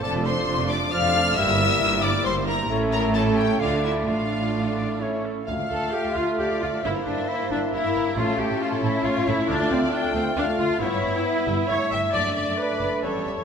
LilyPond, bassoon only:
\new Staff \with { instrumentName = "Bassoon" } { \time 3/4 \key d \minor \tempo 4 = 135 f2 f4 | g2~ g8 r8 | a4 a4 a4 | a2 a8 r8 |
a2. | bes2. | a2.~ | a2. |
\key d \major b2 a4~ | a2 g4 | }